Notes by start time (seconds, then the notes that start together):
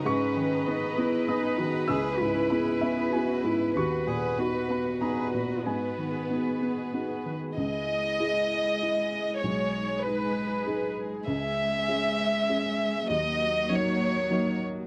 Already playing: A#5
0.05 G#2 C#4 G#4 B4 D#5 C#6
0.20 D#5
0.36 D#3 D#5
0.50 G#4
0.65 B3 D#4 B4 D#5
0.80 B4
0.96 B3 E4 G#4
1.12 D#5
1.28 B3 D#4 B4 G#5 D#6
1.43 G#4
1.58 D#3 F#4 B4
1.88 C#2 C#4 E4 G#4 E6
2.04 G#4
2.20 G#2 E4 G#4
2.34 C#4
2.50 B3 E4 G#4 B5
2.65 E4
2.80 B3 C#4 E5
2.96 G#4
3.11 B3 E4 F#4 G#4 B4 G#5
3.27 C#4
3.43 G#2 E4
3.74 D#2 F#4 B4 C#6
3.91 F#5
4.06 A#2 G#4 F#5
4.22 B4
4.38 B3 D#4 F#4 F#5
4.53 D#5
4.68 B3 B4 B5
4.84 F#5
5.00 B3 D#4 F#4 G#4 B4 A#5
5.16 B4
5.33 A#2 F#4 D#5
5.64 G#2 B3 G#4 B4 G#5
5.82 D#5
5.98 D#3 D#5
6.13 G#4
6.29 B3 D#4 F#4 D#5
6.46 B4
6.61 B3 G#4
6.77 D#5
6.93 B3 D#4 F#4 F#5
7.09 G#4
7.26 D#3 B4
7.56 C#2 G#3 E4 G#4 D#5
8.20 G#3 E4 G#4
8.82 G#3 E4 G#4
9.43 B1 D#4 C#5
10.02 G#3 D#4 G#4 B4
10.66 G#3 D#4 G#4
11.26 C#2 G#3 C#4 E5
11.88 G#3 C#4 G#4
12.49 G#3 C#4 G#4
13.09 D#2 F#3 A#3 D#4 F#4 D#5
13.70 F#3 A#3 D#4 C#5
14.30 F#3 A#3 D#4